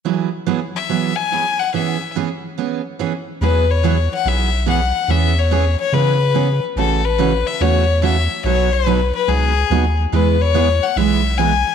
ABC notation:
X:1
M:4/4
L:1/8
Q:"Swing" 1/4=143
K:E
V:1 name="Fiddle"
z3 e2 g2 f | e2 z6 | B c2 f e2 f2 | e c2 c B3 z |
A B2 e c2 e2 | c B2 B G3 z | B c2 f e2 g2 |]
V:2 name="Steel-string acoustic guitar"
[E,F,B,EG] z [E,F,B,EG] z [E,F,B,EG] z [E,F,B,EG] z | [E,B,CG] z [E,B,CG] z [E,B,CG] z [E,B,CG] z | [E,F,B,EG] z [E,F,B,EG] z [E,F,B,EG] z [E,F,B,EG] z | [E,B,CG] z [E,B,CG] z [E,B,CG] z [E,B,CG] z |
[C,E,A,CF] z [C,E,A,CF] z [C,E,A,CF] z [C,E,A,CF] z | [B,,F,B,DF] z [B,,F,B,DF] z [B,,F,B,DF] z [B,,F,B,DF] z | [E,G,B,EG] z [E,G,B,EG] z [E,G,B,EG] z [E,G,B,EG] z |]
V:3 name="Analog synth bass" clef=bass
z8 | z8 | E,,4 B,,,4 | E,,4 C,4 |
A,,,4 E,,4 | B,,,4 C,,2 D,,2 | E,,4 B,,,4 |]